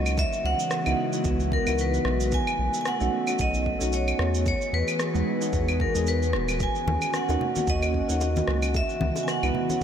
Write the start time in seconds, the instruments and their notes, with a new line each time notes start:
Already playing: analog synth bass C#2, analog synth pad F#3 C#4, synth keys A#3 C#4 D#4 F#4, vibraphone D#5
0.06 claves, shaker
0.18 analog synth pad C#3 E3 G#3 B3 F#4, vibraphone E5, kick, shaker
0.33 shaker
0.44 analog synth bass C#2, vibraphone F#5
0.60 shaker
0.71 cross-stick, shaker
0.86 analog synth bass C#2, synth keys B3 D#4 E4 F#4, claves, shaker
1.12 synth keys B3 D#4 E4 F#4, shaker
1.24 analog synth bass C#2, kick, shaker
1.40 shaker
1.52 vibraphone A#4, kick
1.65 analog synth bass C#2, synth keys B3 D#4 E4 F#4, claves, shaker
1.78 vibraphone B4, shaker
1.94 shaker
2.05 analog synth bass B1, cross-stick
2.20 shaker
2.32 analog synth pad A3, vibraphone G#5, kick, shaker
2.47 claves, shaker
2.59 analog synth bass B1
2.74 shaker
2.81 vibraphone G#5
2.85 vibraphone F#5, cross-stick, shaker
3.00 analog synth bass B1, synth keys A3 C#4 D#4 F#4, shaker
3.27 synth keys A3 C#4 D#4 F#4, claves, shaker
3.39 analog synth bass B1, vibraphone D#5, kick, shaker
3.54 shaker
3.66 kick
3.79 analog synth bass B1, synth keys A3 C#4 D#4 F#4, shaker
3.93 vibraphone C#5, shaker
4.08 claves, shaker
4.19 analog synth bass E2, cross-stick
4.35 shaker
4.46 analog synth pad E3 B3 F#4 G#4, vibraphone C#5, kick, shaker
4.61 shaker
4.73 analog synth bass E2, vibraphone B4
4.88 claves, shaker
5.00 cross-stick, shaker
5.14 analog synth bass E2, synth keys G#3 B3 D#4 F#4, shaker
5.40 synth keys G#3 B3 D#4 F#4, shaker
5.53 analog synth bass E2, kick, shaker
5.69 claves, shaker
5.80 vibraphone A#4, kick
5.94 analog synth bass E2, synth keys G#3 B3 D#4 G#4, shaker
6.07 vibraphone B4, shaker
6.22 shaker
6.33 analog synth bass D#1, cross-stick
6.49 claves, shaker
6.60 analog synth pad C#4 F#4, vibraphone G#5, kick, shaker
6.75 shaker
6.87 analog synth bass D#2, high bongo, high conga
7.02 claves, shaker
7.14 vibraphone F#5, cross-stick, shaker
7.28 analog synth bass D#2, synth keys A#3 C#4 D#4 F#4, high bongo, shaker
7.41 low conga
7.56 synth keys A#3 C#4 D#4 F#4, high conga, shaker
7.67 analog synth bass D#2, vibraphone D#5, kick, shaker
7.82 high bongo, claves, shaker
7.94 kick
8.08 analog synth bass D#2, synth keys A#3 C#4 D#4 F#4, shaker
8.21 high bongo, shaker
8.36 high conga, shaker
8.48 analog synth bass C#2, cross-stick
8.62 claves, shaker
8.74 analog synth pad C#3 E3 B3, vibraphone E5, kick, high bongo, shaker
8.89 shaker
9.01 analog synth bass C#2, high conga
9.16 high bongo, shaker
9.23 vibraphone G#5
9.28 vibraphone F#5, cross-stick, shaker
9.43 analog synth bass C#2, synth keys B3 D#4 E4 F#4, claves, shaker
9.55 low conga
9.69 synth keys B3 C#4 E4 F#4, high bongo, high conga, shaker